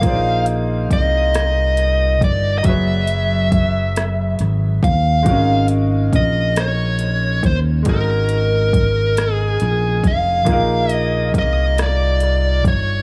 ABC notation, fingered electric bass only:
X:1
M:6/8
L:1/8
Q:3/8=46
K:Abmix
V:1 name="Fingered electric bass" clef=bass
B,,,2 C,,3 =G,,, | G,,,4 A,,, E,, | A,,,2 B,,,3 E,, | A,,,4 B,,, F,,, |
B,,,2 C,,3 =G,,, |]